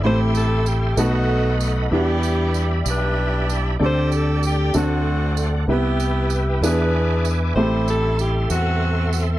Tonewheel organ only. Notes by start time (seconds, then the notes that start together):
Already playing: E5
0.04 A4 G5 C6
0.98 D#5 F#5 B5
1.91 G4 D5 E5 B5
3.79 A4 G5
4.75 F#5
5.69 B4 E5 G5
6.62 G#5 D6
7.56 A4 C6